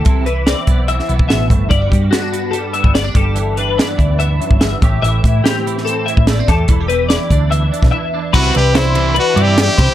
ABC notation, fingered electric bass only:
X:1
M:4/4
L:1/16
Q:1/4=145
K:Clyd
V:1 name="Fingered electric bass" clef=bass
C,,6 B,,,4 B,,,2 A,,,2 G,,,2 | G,,,2 G,,2 z6 z G,,,3 G,,,2- | G,,,6 D,,4- D,, G,,,3 A,,,2 | A,,,2 A,,2 z6 z A,,,3 E,,2 |
E,,,6 D,,4- D,, B,,, z4 | C,,2 C,,8 G,,4 C, z |]